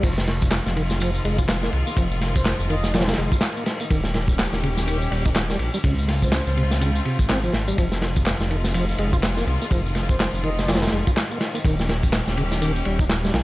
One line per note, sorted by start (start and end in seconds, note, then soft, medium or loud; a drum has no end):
0.03 0.60 F1 loud
0.03 5.80 D#3 medium
0.03 0.14 F3 loud
0.03 3.87 G#3 medium
0.03 3.87 F4 loud
0.03 kick loud
0.03 crash medium
0.03 ride medium
0.03 tambourine medium
0.18 snare medium
0.18 tambourine soft
0.27 snare soft
0.27 ride medium
0.42 kick loud
0.42 tambourine medium
0.51 snare loud
0.51 clap loud
0.51 ride medium
0.51 tambourine medium
0.66 1.20 F1 medium
0.66 snare medium
0.66 tambourine soft
0.76 0.82 D#3 medium
0.76 ride medium
0.90 snare soft
0.90 tambourine medium
1.00 1.11 F3 loud
1.00 ride medium
1.00 tambourine medium
1.15 tambourine soft
1.25 1.69 F1 medium
1.25 1.37 G#3 medium
1.25 ride medium
1.38 1.43 F4 medium
1.38 kick loud
1.38 tambourine medium
1.49 snare loud
1.49 clap loud
1.49 ride medium
1.49 tambourine medium
1.63 1.70 A#3 medium
1.63 snare medium
1.63 tambourine soft
1.73 1.83 C2 loud
1.73 ride medium
1.87 1.91 A#3 loud
1.87 tambourine medium
1.97 2.53 F1 loud
1.97 2.07 F3 loud
1.97 kick loud
1.97 ride medium
1.97 tambourine medium
2.12 tambourine soft
2.21 snare soft
2.21 ride medium
2.35 2.42 C5 medium
2.35 kick medium
2.35 tambourine medium
2.46 2.55 C5 medium
2.46 snare loud
2.46 clap loud
2.46 ride medium
2.46 tambourine medium
2.59 3.14 F1 medium
2.59 tambourine soft
2.70 2.76 D#3 medium
2.70 3.08 D#5 loud
2.70 ride medium
2.84 snare soft
2.84 tambourine medium
2.94 3.04 F3 loud
2.94 snare medium
2.94 ride medium
2.94 tambourine medium
3.01 snare medium
3.01 ride medium
3.08 snare loud
3.08 ride medium
3.08 tambourine soft
3.13 snare medium
3.13 ride medium
3.18 3.28 F1 medium
3.18 3.31 G#3 medium
3.18 ride medium
3.32 3.37 F4 medium
3.32 kick medium
3.32 tambourine medium
3.41 snare loud
3.41 clap loud
3.41 ride medium
3.41 tambourine medium
3.57 3.64 A#3 medium
3.57 tambourine soft
3.66 snare medium
3.66 ride medium
3.80 3.85 A#3 loud
3.80 ride soft
3.80 tambourine medium
3.90 4.47 D#1 loud
3.90 4.01 D#3 loud
3.90 5.82 C#4 medium
3.90 5.82 G4 loud
3.90 kick loud
3.90 ride medium
3.90 tambourine medium
4.04 snare medium
4.04 tambourine soft
4.14 snare soft
4.14 ride medium
4.28 kick loud
4.28 tambourine medium
4.39 snare loud
4.39 clap loud
4.39 ride medium
4.39 tambourine medium
4.52 5.07 D#1 medium
4.52 snare medium
4.52 tambourine soft
4.63 4.69 C#3 medium
4.63 ride medium
4.77 snare soft
4.77 tambourine medium
4.87 4.98 D#3 loud
4.87 ride medium
4.87 tambourine medium
5.02 tambourine soft
5.11 5.55 D#1 medium
5.11 5.24 G3 medium
5.11 ride medium
5.25 5.30 D#4 medium
5.25 kick medium
5.25 tambourine medium
5.35 snare loud
5.35 clap loud
5.35 ride medium
5.35 tambourine medium
5.50 5.57 G3 medium
5.50 snare medium
5.50 tambourine soft
5.59 5.70 A#1 loud
5.59 ride medium
5.74 5.79 G3 loud
5.74 tambourine medium
5.84 6.40 C#2 loud
5.84 7.75 C#3 medium
5.84 5.95 C#3 loud
5.84 7.75 C4 medium
5.84 7.75 F4 loud
5.84 kick loud
5.84 ride medium
5.84 tambourine medium
5.98 tambourine soft
6.08 snare soft
6.08 ride medium
6.22 6.29 C5 medium
6.22 kick medium
6.22 tambourine medium
6.32 6.41 C5 medium
6.32 snare loud
6.32 clap loud
6.32 ride medium
6.32 tambourine medium
6.46 7.01 C#2 medium
6.46 6.53 C5 medium
6.46 tambourine soft
6.57 6.63 C3 medium
6.57 6.66 C5 medium
6.57 ride medium
6.71 snare soft
6.71 tambourine medium
6.81 6.91 C#3 loud
6.81 ride medium
6.81 tambourine medium
6.96 tambourine soft
7.05 7.18 C3 medium
7.05 ride medium
7.19 7.49 G#1 medium
7.19 kick medium
7.19 tambourine medium
7.29 7.40 C4 medium
7.29 snare loud
7.29 clap loud
7.29 ride medium
7.29 tambourine medium
7.44 7.53 F3 medium
7.44 tambourine soft
7.53 7.72 G#1 medium
7.53 snare medium
7.53 ride medium
7.68 7.77 G3 medium
7.68 ride soft
7.68 tambourine medium
7.77 8.34 F1 loud
7.77 13.43 D#3 medium
7.77 7.88 F3 loud
7.77 11.61 G#3 medium
7.77 11.61 F4 loud
7.77 kick loud
7.77 ride medium
7.77 tambourine medium
7.92 snare medium
7.92 tambourine soft
8.02 snare medium
8.02 ride medium
8.16 kick medium
8.16 tambourine medium
8.26 snare loud
8.26 clap loud
8.26 ride medium
8.26 tambourine medium
8.40 8.94 F1 medium
8.40 snare medium
8.40 tambourine soft
8.50 8.57 D#3 medium
8.50 ride medium
8.64 snare soft
8.64 tambourine medium
8.74 8.85 F3 loud
8.74 ride medium
8.74 tambourine medium
8.89 tambourine soft
8.98 9.43 F1 medium
8.98 9.11 G#3 medium
8.98 ride medium
9.13 9.17 F4 medium
9.13 kick medium
9.13 tambourine medium
9.23 snare loud
9.23 clap loud
9.23 ride medium
9.23 tambourine medium
9.37 9.45 A#3 medium
9.37 snare medium
9.37 tambourine soft
9.47 9.57 C2 loud
9.47 ride medium
9.62 9.66 A#3 loud
9.62 tambourine medium
9.71 10.27 F1 loud
9.71 9.82 F3 loud
9.71 kick loud
9.71 ride medium
9.71 tambourine medium
9.86 tambourine soft
9.95 snare soft
9.95 ride medium
10.09 10.16 C5 medium
10.09 kick medium
10.09 tambourine medium
10.19 10.28 C5 medium
10.19 snare loud
10.19 clap loud
10.19 ride medium
10.19 tambourine medium
10.33 10.88 F1 medium
10.33 tambourine soft
10.43 10.50 D#3 medium
10.43 10.82 D#5 loud
10.43 ride medium
10.59 snare soft
10.59 tambourine medium
10.68 10.79 F3 loud
10.68 snare medium
10.68 ride medium
10.68 tambourine medium
10.75 snare medium
10.75 ride medium
10.82 snare medium
10.82 ride medium
10.82 tambourine soft
10.87 snare medium
10.87 ride medium
10.92 11.02 F1 medium
10.92 11.05 G#3 medium
10.92 ride medium
11.07 11.11 F4 medium
11.07 kick loud
11.07 tambourine medium
11.17 snare loud
11.17 clap loud
11.17 ride medium
11.17 tambourine medium
11.31 11.38 A#3 medium
11.31 tambourine soft
11.41 snare medium
11.41 ride medium
11.54 11.59 A#3 loud
11.54 ride soft
11.54 tambourine medium
11.64 12.21 D#1 loud
11.64 11.75 D#3 loud
11.64 13.43 C#4 medium
11.64 13.43 G4 loud
11.64 kick loud
11.64 ride medium
11.64 tambourine medium
11.79 snare soft
11.79 tambourine soft
11.89 snare medium
11.89 ride medium
12.03 kick loud
12.03 tambourine medium
12.13 snare loud
12.13 clap loud
12.13 ride medium
12.13 tambourine medium
12.27 12.81 D#1 medium
12.27 snare medium
12.27 tambourine soft
12.37 12.44 C#3 medium
12.37 ride medium
12.52 snare soft
12.52 tambourine medium
12.62 12.72 D#3 loud
12.62 ride medium
12.62 tambourine medium
12.76 tambourine soft
12.85 13.30 D#1 medium
12.85 12.98 G3 medium
12.85 ride medium
12.99 13.04 D#4 medium
12.99 kick medium
12.99 tambourine medium
13.09 snare loud
13.09 clap loud
13.09 ride medium
13.09 tambourine medium
13.24 13.32 G3 medium
13.24 snare medium
13.24 tambourine soft
13.34 13.43 A#1 loud
13.34 snare loud
13.34 ride medium